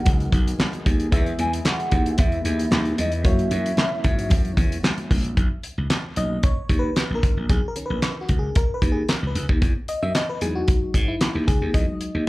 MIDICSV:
0, 0, Header, 1, 6, 480
1, 0, Start_track
1, 0, Key_signature, 5, "major"
1, 0, Tempo, 530973
1, 1015, Time_signature, 4, 2, 24, 8
1, 11109, End_track
2, 0, Start_track
2, 0, Title_t, "Soft synth lead"
2, 0, Program_c, 0, 80
2, 0, Note_on_c, 0, 78, 127
2, 741, Note_off_c, 0, 78, 0
2, 1264, Note_on_c, 0, 80, 111
2, 1370, Note_off_c, 0, 80, 0
2, 1503, Note_on_c, 0, 78, 108
2, 1982, Note_on_c, 0, 76, 89
2, 1996, Note_off_c, 0, 78, 0
2, 2459, Note_off_c, 0, 76, 0
2, 2703, Note_on_c, 0, 75, 101
2, 2809, Note_off_c, 0, 75, 0
2, 2939, Note_on_c, 0, 76, 127
2, 4341, Note_off_c, 0, 76, 0
2, 11109, End_track
3, 0, Start_track
3, 0, Title_t, "FM electric piano"
3, 0, Program_c, 1, 5
3, 0, Note_on_c, 1, 59, 69
3, 0, Note_on_c, 1, 63, 67
3, 0, Note_on_c, 1, 66, 60
3, 0, Note_on_c, 1, 70, 63
3, 0, Note_on_c, 1, 75, 71
3, 975, Note_off_c, 1, 59, 0
3, 976, Note_off_c, 1, 63, 0
3, 978, Note_off_c, 1, 66, 0
3, 980, Note_off_c, 1, 70, 0
3, 982, Note_off_c, 1, 75, 0
3, 1008, Note_on_c, 1, 59, 81
3, 1017, Note_on_c, 1, 64, 71
3, 1021, Note_on_c, 1, 68, 72
3, 1024, Note_on_c, 1, 76, 93
3, 2896, Note_off_c, 1, 59, 0
3, 2900, Note_off_c, 1, 64, 0
3, 2902, Note_off_c, 1, 68, 0
3, 2904, Note_off_c, 1, 76, 0
3, 2930, Note_on_c, 1, 58, 72
3, 2932, Note_on_c, 1, 61, 61
3, 2936, Note_on_c, 1, 64, 62
3, 2939, Note_on_c, 1, 66, 65
3, 2944, Note_on_c, 1, 73, 81
3, 4817, Note_off_c, 1, 58, 0
3, 4818, Note_off_c, 1, 61, 0
3, 4819, Note_off_c, 1, 64, 0
3, 4821, Note_off_c, 1, 66, 0
3, 4823, Note_off_c, 1, 73, 0
3, 5572, Note_on_c, 1, 51, 57
3, 5576, Note_on_c, 1, 58, 51
3, 5579, Note_on_c, 1, 75, 103
3, 5582, Note_on_c, 1, 61, 62
3, 5819, Note_on_c, 1, 73, 98
3, 5824, Note_off_c, 1, 75, 0
3, 5898, Note_off_c, 1, 51, 0
3, 5900, Note_off_c, 1, 58, 0
3, 5903, Note_off_c, 1, 61, 0
3, 6139, Note_on_c, 1, 71, 92
3, 6147, Note_off_c, 1, 73, 0
3, 6464, Note_on_c, 1, 70, 86
3, 6467, Note_off_c, 1, 71, 0
3, 6781, Note_on_c, 1, 68, 87
3, 6789, Note_off_c, 1, 70, 0
3, 6927, Note_off_c, 1, 68, 0
3, 6942, Note_on_c, 1, 70, 87
3, 7006, Note_off_c, 1, 70, 0
3, 7011, Note_on_c, 1, 51, 55
3, 7016, Note_on_c, 1, 70, 49
3, 7020, Note_on_c, 1, 61, 59
3, 7103, Note_on_c, 1, 71, 84
3, 7422, Note_on_c, 1, 66, 74
3, 7428, Note_off_c, 1, 71, 0
3, 7584, Note_off_c, 1, 66, 0
3, 7584, Note_on_c, 1, 68, 84
3, 7733, Note_off_c, 1, 70, 0
3, 7744, Note_off_c, 1, 68, 0
3, 7744, Note_on_c, 1, 70, 91
3, 7902, Note_on_c, 1, 71, 87
3, 7904, Note_off_c, 1, 70, 0
3, 8062, Note_on_c, 1, 68, 80
3, 8063, Note_off_c, 1, 71, 0
3, 8219, Note_on_c, 1, 70, 89
3, 8223, Note_off_c, 1, 68, 0
3, 8290, Note_off_c, 1, 70, 0
3, 8380, Note_on_c, 1, 71, 69
3, 8601, Note_off_c, 1, 71, 0
3, 8657, Note_off_c, 1, 51, 0
3, 8662, Note_off_c, 1, 61, 0
3, 8938, Note_on_c, 1, 75, 97
3, 9063, Note_on_c, 1, 76, 101
3, 9068, Note_off_c, 1, 75, 0
3, 9177, Note_on_c, 1, 75, 93
3, 9179, Note_off_c, 1, 76, 0
3, 9305, Note_on_c, 1, 71, 89
3, 9307, Note_off_c, 1, 75, 0
3, 9409, Note_off_c, 1, 71, 0
3, 9414, Note_on_c, 1, 54, 54
3, 9416, Note_on_c, 1, 68, 96
3, 9418, Note_on_c, 1, 56, 53
3, 9424, Note_on_c, 1, 63, 64
3, 9473, Note_off_c, 1, 68, 0
3, 9540, Note_on_c, 1, 66, 89
3, 9988, Note_off_c, 1, 66, 0
3, 10017, Note_on_c, 1, 64, 84
3, 10372, Note_on_c, 1, 68, 89
3, 10383, Note_off_c, 1, 64, 0
3, 10599, Note_off_c, 1, 54, 0
3, 10605, Note_off_c, 1, 56, 0
3, 10609, Note_off_c, 1, 63, 0
3, 10610, Note_on_c, 1, 54, 57
3, 10613, Note_on_c, 1, 75, 86
3, 10616, Note_on_c, 1, 56, 53
3, 10620, Note_on_c, 1, 63, 58
3, 10621, Note_off_c, 1, 68, 0
3, 10937, Note_off_c, 1, 54, 0
3, 10940, Note_off_c, 1, 56, 0
3, 10942, Note_off_c, 1, 63, 0
3, 11109, Note_off_c, 1, 75, 0
3, 11109, End_track
4, 0, Start_track
4, 0, Title_t, "Analog synth pad"
4, 0, Program_c, 2, 89
4, 0, Note_on_c, 2, 51, 86
4, 0, Note_on_c, 2, 54, 77
4, 0, Note_on_c, 2, 59, 82
4, 0, Note_on_c, 2, 68, 96
4, 0, Note_on_c, 2, 70, 81
4, 977, Note_off_c, 2, 54, 0
4, 978, Note_off_c, 2, 51, 0
4, 978, Note_off_c, 2, 70, 0
4, 979, Note_off_c, 2, 59, 0
4, 1018, Note_on_c, 2, 64, 75
4, 1019, Note_on_c, 2, 56, 85
4, 1019, Note_on_c, 2, 59, 83
4, 1020, Note_on_c, 2, 52, 89
4, 2900, Note_off_c, 2, 68, 0
4, 2918, Note_off_c, 2, 56, 0
4, 2918, Note_off_c, 2, 59, 0
4, 2918, Note_off_c, 2, 64, 0
4, 2939, Note_on_c, 2, 54, 79
4, 2939, Note_on_c, 2, 61, 76
4, 2939, Note_on_c, 2, 66, 93
4, 2940, Note_on_c, 2, 58, 82
4, 4822, Note_off_c, 2, 52, 0
4, 4838, Note_off_c, 2, 54, 0
4, 4838, Note_off_c, 2, 58, 0
4, 4838, Note_off_c, 2, 61, 0
4, 4838, Note_off_c, 2, 66, 0
4, 11109, End_track
5, 0, Start_track
5, 0, Title_t, "Slap bass"
5, 0, Program_c, 3, 36
5, 58, Note_on_c, 3, 37, 97
5, 237, Note_off_c, 3, 37, 0
5, 293, Note_on_c, 3, 35, 88
5, 474, Note_off_c, 3, 35, 0
5, 778, Note_on_c, 3, 39, 94
5, 957, Note_off_c, 3, 39, 0
5, 1015, Note_on_c, 3, 40, 106
5, 1195, Note_off_c, 3, 40, 0
5, 1255, Note_on_c, 3, 40, 95
5, 1435, Note_off_c, 3, 40, 0
5, 1736, Note_on_c, 3, 39, 97
5, 1915, Note_off_c, 3, 39, 0
5, 1976, Note_on_c, 3, 40, 96
5, 2155, Note_off_c, 3, 40, 0
5, 2216, Note_on_c, 3, 39, 91
5, 2395, Note_off_c, 3, 39, 0
5, 2455, Note_on_c, 3, 39, 104
5, 2635, Note_off_c, 3, 39, 0
5, 2695, Note_on_c, 3, 40, 95
5, 2935, Note_off_c, 3, 40, 0
5, 2935, Note_on_c, 3, 42, 106
5, 3115, Note_off_c, 3, 42, 0
5, 3175, Note_on_c, 3, 42, 97
5, 3355, Note_off_c, 3, 42, 0
5, 3656, Note_on_c, 3, 44, 97
5, 3898, Note_off_c, 3, 44, 0
5, 3898, Note_on_c, 3, 42, 99
5, 4077, Note_off_c, 3, 42, 0
5, 4134, Note_on_c, 3, 40, 82
5, 4314, Note_off_c, 3, 40, 0
5, 4618, Note_on_c, 3, 34, 96
5, 4797, Note_off_c, 3, 34, 0
5, 4856, Note_on_c, 3, 35, 97
5, 4951, Note_off_c, 3, 35, 0
5, 5223, Note_on_c, 3, 37, 85
5, 5307, Note_off_c, 3, 37, 0
5, 5577, Note_on_c, 3, 35, 94
5, 5756, Note_off_c, 3, 35, 0
5, 6052, Note_on_c, 3, 39, 78
5, 6233, Note_off_c, 3, 39, 0
5, 6422, Note_on_c, 3, 34, 77
5, 6506, Note_off_c, 3, 34, 0
5, 6538, Note_on_c, 3, 32, 93
5, 6632, Note_off_c, 3, 32, 0
5, 6662, Note_on_c, 3, 34, 80
5, 6747, Note_off_c, 3, 34, 0
5, 6775, Note_on_c, 3, 35, 102
5, 6870, Note_off_c, 3, 35, 0
5, 7142, Note_on_c, 3, 34, 97
5, 7227, Note_off_c, 3, 34, 0
5, 7496, Note_on_c, 3, 37, 85
5, 7676, Note_off_c, 3, 37, 0
5, 7973, Note_on_c, 3, 39, 83
5, 8154, Note_off_c, 3, 39, 0
5, 8341, Note_on_c, 3, 37, 78
5, 8426, Note_off_c, 3, 37, 0
5, 8453, Note_on_c, 3, 37, 90
5, 8549, Note_off_c, 3, 37, 0
5, 8580, Note_on_c, 3, 39, 86
5, 8665, Note_off_c, 3, 39, 0
5, 8696, Note_on_c, 3, 40, 106
5, 8791, Note_off_c, 3, 40, 0
5, 9062, Note_on_c, 3, 42, 88
5, 9146, Note_off_c, 3, 42, 0
5, 9414, Note_on_c, 3, 40, 86
5, 9594, Note_off_c, 3, 40, 0
5, 9891, Note_on_c, 3, 44, 82
5, 10072, Note_off_c, 3, 44, 0
5, 10261, Note_on_c, 3, 39, 87
5, 10346, Note_off_c, 3, 39, 0
5, 10378, Note_on_c, 3, 37, 85
5, 10472, Note_off_c, 3, 37, 0
5, 10501, Note_on_c, 3, 39, 85
5, 10586, Note_off_c, 3, 39, 0
5, 10615, Note_on_c, 3, 40, 101
5, 10711, Note_off_c, 3, 40, 0
5, 10980, Note_on_c, 3, 39, 86
5, 11065, Note_off_c, 3, 39, 0
5, 11109, End_track
6, 0, Start_track
6, 0, Title_t, "Drums"
6, 50, Note_on_c, 9, 62, 61
6, 50, Note_on_c, 9, 64, 83
6, 54, Note_on_c, 9, 42, 89
6, 59, Note_on_c, 9, 36, 127
6, 141, Note_off_c, 9, 62, 0
6, 141, Note_off_c, 9, 64, 0
6, 144, Note_off_c, 9, 42, 0
6, 149, Note_off_c, 9, 36, 0
6, 183, Note_on_c, 9, 42, 38
6, 274, Note_off_c, 9, 42, 0
6, 293, Note_on_c, 9, 36, 101
6, 295, Note_on_c, 9, 62, 36
6, 300, Note_on_c, 9, 42, 70
6, 384, Note_off_c, 9, 36, 0
6, 385, Note_off_c, 9, 62, 0
6, 390, Note_off_c, 9, 42, 0
6, 430, Note_on_c, 9, 42, 54
6, 521, Note_off_c, 9, 42, 0
6, 531, Note_on_c, 9, 63, 77
6, 540, Note_on_c, 9, 38, 115
6, 549, Note_on_c, 9, 39, 95
6, 621, Note_off_c, 9, 63, 0
6, 630, Note_off_c, 9, 38, 0
6, 639, Note_off_c, 9, 39, 0
6, 661, Note_on_c, 9, 42, 38
6, 751, Note_off_c, 9, 42, 0
6, 778, Note_on_c, 9, 36, 98
6, 779, Note_on_c, 9, 42, 85
6, 779, Note_on_c, 9, 63, 77
6, 869, Note_off_c, 9, 36, 0
6, 870, Note_off_c, 9, 42, 0
6, 870, Note_off_c, 9, 63, 0
6, 902, Note_on_c, 9, 42, 46
6, 992, Note_off_c, 9, 42, 0
6, 1014, Note_on_c, 9, 62, 54
6, 1016, Note_on_c, 9, 36, 127
6, 1017, Note_on_c, 9, 42, 83
6, 1105, Note_off_c, 9, 62, 0
6, 1106, Note_off_c, 9, 36, 0
6, 1107, Note_off_c, 9, 42, 0
6, 1142, Note_on_c, 9, 42, 37
6, 1233, Note_off_c, 9, 42, 0
6, 1254, Note_on_c, 9, 42, 69
6, 1258, Note_on_c, 9, 62, 57
6, 1344, Note_off_c, 9, 42, 0
6, 1349, Note_off_c, 9, 62, 0
6, 1387, Note_on_c, 9, 42, 62
6, 1478, Note_off_c, 9, 42, 0
6, 1492, Note_on_c, 9, 63, 73
6, 1496, Note_on_c, 9, 38, 109
6, 1505, Note_on_c, 9, 39, 92
6, 1582, Note_off_c, 9, 63, 0
6, 1586, Note_off_c, 9, 38, 0
6, 1595, Note_off_c, 9, 39, 0
6, 1625, Note_on_c, 9, 42, 38
6, 1716, Note_off_c, 9, 42, 0
6, 1731, Note_on_c, 9, 42, 72
6, 1736, Note_on_c, 9, 36, 91
6, 1737, Note_on_c, 9, 64, 65
6, 1822, Note_off_c, 9, 42, 0
6, 1826, Note_off_c, 9, 36, 0
6, 1827, Note_off_c, 9, 64, 0
6, 1863, Note_on_c, 9, 42, 47
6, 1953, Note_off_c, 9, 42, 0
6, 1968, Note_on_c, 9, 62, 58
6, 1969, Note_on_c, 9, 42, 94
6, 1977, Note_on_c, 9, 36, 127
6, 2058, Note_off_c, 9, 62, 0
6, 2060, Note_off_c, 9, 42, 0
6, 2067, Note_off_c, 9, 36, 0
6, 2097, Note_on_c, 9, 42, 37
6, 2188, Note_off_c, 9, 42, 0
6, 2214, Note_on_c, 9, 62, 36
6, 2215, Note_on_c, 9, 42, 71
6, 2304, Note_off_c, 9, 62, 0
6, 2305, Note_off_c, 9, 42, 0
6, 2345, Note_on_c, 9, 42, 52
6, 2435, Note_off_c, 9, 42, 0
6, 2448, Note_on_c, 9, 63, 80
6, 2456, Note_on_c, 9, 38, 118
6, 2465, Note_on_c, 9, 39, 98
6, 2538, Note_off_c, 9, 63, 0
6, 2547, Note_off_c, 9, 38, 0
6, 2555, Note_off_c, 9, 39, 0
6, 2579, Note_on_c, 9, 42, 37
6, 2669, Note_off_c, 9, 42, 0
6, 2697, Note_on_c, 9, 42, 87
6, 2698, Note_on_c, 9, 63, 80
6, 2787, Note_off_c, 9, 42, 0
6, 2788, Note_off_c, 9, 63, 0
6, 2818, Note_on_c, 9, 42, 52
6, 2908, Note_off_c, 9, 42, 0
6, 2933, Note_on_c, 9, 62, 52
6, 2935, Note_on_c, 9, 36, 121
6, 2936, Note_on_c, 9, 42, 78
6, 3023, Note_off_c, 9, 62, 0
6, 3026, Note_off_c, 9, 36, 0
6, 3026, Note_off_c, 9, 42, 0
6, 3063, Note_on_c, 9, 42, 39
6, 3154, Note_off_c, 9, 42, 0
6, 3173, Note_on_c, 9, 42, 65
6, 3175, Note_on_c, 9, 62, 56
6, 3263, Note_off_c, 9, 42, 0
6, 3265, Note_off_c, 9, 62, 0
6, 3308, Note_on_c, 9, 42, 58
6, 3398, Note_off_c, 9, 42, 0
6, 3410, Note_on_c, 9, 63, 75
6, 3417, Note_on_c, 9, 38, 107
6, 3426, Note_on_c, 9, 39, 84
6, 3500, Note_off_c, 9, 63, 0
6, 3507, Note_off_c, 9, 38, 0
6, 3516, Note_off_c, 9, 39, 0
6, 3652, Note_on_c, 9, 42, 71
6, 3657, Note_on_c, 9, 36, 90
6, 3659, Note_on_c, 9, 64, 68
6, 3743, Note_off_c, 9, 42, 0
6, 3747, Note_off_c, 9, 36, 0
6, 3749, Note_off_c, 9, 64, 0
6, 3784, Note_on_c, 9, 42, 49
6, 3875, Note_off_c, 9, 42, 0
6, 3889, Note_on_c, 9, 62, 59
6, 3889, Note_on_c, 9, 64, 84
6, 3894, Note_on_c, 9, 42, 94
6, 3898, Note_on_c, 9, 36, 127
6, 3980, Note_off_c, 9, 62, 0
6, 3980, Note_off_c, 9, 64, 0
6, 3984, Note_off_c, 9, 42, 0
6, 3989, Note_off_c, 9, 36, 0
6, 4021, Note_on_c, 9, 42, 39
6, 4111, Note_off_c, 9, 42, 0
6, 4133, Note_on_c, 9, 36, 95
6, 4133, Note_on_c, 9, 64, 78
6, 4139, Note_on_c, 9, 42, 68
6, 4223, Note_off_c, 9, 36, 0
6, 4223, Note_off_c, 9, 64, 0
6, 4229, Note_off_c, 9, 42, 0
6, 4268, Note_on_c, 9, 42, 52
6, 4359, Note_off_c, 9, 42, 0
6, 4370, Note_on_c, 9, 63, 78
6, 4378, Note_on_c, 9, 38, 119
6, 4386, Note_on_c, 9, 39, 94
6, 4460, Note_off_c, 9, 63, 0
6, 4468, Note_off_c, 9, 38, 0
6, 4477, Note_off_c, 9, 39, 0
6, 4500, Note_on_c, 9, 42, 40
6, 4501, Note_on_c, 9, 63, 42
6, 4590, Note_off_c, 9, 42, 0
6, 4592, Note_off_c, 9, 63, 0
6, 4617, Note_on_c, 9, 63, 80
6, 4618, Note_on_c, 9, 36, 94
6, 4618, Note_on_c, 9, 46, 81
6, 4708, Note_off_c, 9, 36, 0
6, 4708, Note_off_c, 9, 63, 0
6, 4709, Note_off_c, 9, 46, 0
6, 4741, Note_on_c, 9, 42, 47
6, 4831, Note_off_c, 9, 42, 0
6, 4856, Note_on_c, 9, 36, 109
6, 4857, Note_on_c, 9, 42, 73
6, 4947, Note_off_c, 9, 36, 0
6, 4947, Note_off_c, 9, 42, 0
6, 5094, Note_on_c, 9, 42, 70
6, 5184, Note_off_c, 9, 42, 0
6, 5334, Note_on_c, 9, 42, 86
6, 5335, Note_on_c, 9, 38, 108
6, 5344, Note_on_c, 9, 39, 81
6, 5424, Note_off_c, 9, 42, 0
6, 5426, Note_off_c, 9, 38, 0
6, 5435, Note_off_c, 9, 39, 0
6, 5572, Note_on_c, 9, 42, 68
6, 5662, Note_off_c, 9, 42, 0
6, 5814, Note_on_c, 9, 42, 90
6, 5818, Note_on_c, 9, 36, 124
6, 5904, Note_off_c, 9, 42, 0
6, 5908, Note_off_c, 9, 36, 0
6, 6052, Note_on_c, 9, 36, 89
6, 6057, Note_on_c, 9, 42, 71
6, 6142, Note_off_c, 9, 36, 0
6, 6148, Note_off_c, 9, 42, 0
6, 6294, Note_on_c, 9, 42, 84
6, 6297, Note_on_c, 9, 38, 112
6, 6306, Note_on_c, 9, 39, 90
6, 6384, Note_off_c, 9, 42, 0
6, 6387, Note_off_c, 9, 38, 0
6, 6396, Note_off_c, 9, 39, 0
6, 6537, Note_on_c, 9, 36, 98
6, 6537, Note_on_c, 9, 42, 81
6, 6628, Note_off_c, 9, 36, 0
6, 6628, Note_off_c, 9, 42, 0
6, 6776, Note_on_c, 9, 36, 125
6, 6776, Note_on_c, 9, 42, 81
6, 6866, Note_off_c, 9, 36, 0
6, 6866, Note_off_c, 9, 42, 0
6, 7013, Note_on_c, 9, 42, 69
6, 7104, Note_off_c, 9, 42, 0
6, 7252, Note_on_c, 9, 42, 82
6, 7254, Note_on_c, 9, 38, 102
6, 7263, Note_on_c, 9, 39, 79
6, 7343, Note_off_c, 9, 42, 0
6, 7344, Note_off_c, 9, 38, 0
6, 7353, Note_off_c, 9, 39, 0
6, 7491, Note_on_c, 9, 42, 68
6, 7496, Note_on_c, 9, 36, 88
6, 7581, Note_off_c, 9, 42, 0
6, 7586, Note_off_c, 9, 36, 0
6, 7733, Note_on_c, 9, 42, 94
6, 7738, Note_on_c, 9, 36, 120
6, 7823, Note_off_c, 9, 42, 0
6, 7828, Note_off_c, 9, 36, 0
6, 7973, Note_on_c, 9, 36, 98
6, 7980, Note_on_c, 9, 42, 67
6, 8063, Note_off_c, 9, 36, 0
6, 8070, Note_off_c, 9, 42, 0
6, 8213, Note_on_c, 9, 42, 89
6, 8217, Note_on_c, 9, 38, 112
6, 8226, Note_on_c, 9, 39, 90
6, 8304, Note_off_c, 9, 42, 0
6, 8307, Note_off_c, 9, 38, 0
6, 8316, Note_off_c, 9, 39, 0
6, 8457, Note_on_c, 9, 42, 82
6, 8547, Note_off_c, 9, 42, 0
6, 8581, Note_on_c, 9, 36, 96
6, 8671, Note_off_c, 9, 36, 0
6, 8696, Note_on_c, 9, 36, 121
6, 8697, Note_on_c, 9, 42, 77
6, 8786, Note_off_c, 9, 36, 0
6, 8787, Note_off_c, 9, 42, 0
6, 8934, Note_on_c, 9, 42, 67
6, 9025, Note_off_c, 9, 42, 0
6, 9174, Note_on_c, 9, 42, 88
6, 9175, Note_on_c, 9, 38, 101
6, 9184, Note_on_c, 9, 39, 80
6, 9264, Note_off_c, 9, 42, 0
6, 9266, Note_off_c, 9, 38, 0
6, 9275, Note_off_c, 9, 39, 0
6, 9413, Note_on_c, 9, 42, 69
6, 9503, Note_off_c, 9, 42, 0
6, 9652, Note_on_c, 9, 42, 92
6, 9657, Note_on_c, 9, 36, 122
6, 9743, Note_off_c, 9, 42, 0
6, 9747, Note_off_c, 9, 36, 0
6, 9891, Note_on_c, 9, 36, 86
6, 9895, Note_on_c, 9, 42, 69
6, 9982, Note_off_c, 9, 36, 0
6, 9986, Note_off_c, 9, 42, 0
6, 10131, Note_on_c, 9, 42, 87
6, 10135, Note_on_c, 9, 38, 116
6, 10144, Note_on_c, 9, 39, 95
6, 10222, Note_off_c, 9, 42, 0
6, 10225, Note_off_c, 9, 38, 0
6, 10234, Note_off_c, 9, 39, 0
6, 10377, Note_on_c, 9, 36, 99
6, 10377, Note_on_c, 9, 42, 81
6, 10467, Note_off_c, 9, 36, 0
6, 10468, Note_off_c, 9, 42, 0
6, 10615, Note_on_c, 9, 36, 116
6, 10616, Note_on_c, 9, 42, 80
6, 10706, Note_off_c, 9, 36, 0
6, 10707, Note_off_c, 9, 42, 0
6, 10854, Note_on_c, 9, 42, 71
6, 10945, Note_off_c, 9, 42, 0
6, 11109, End_track
0, 0, End_of_file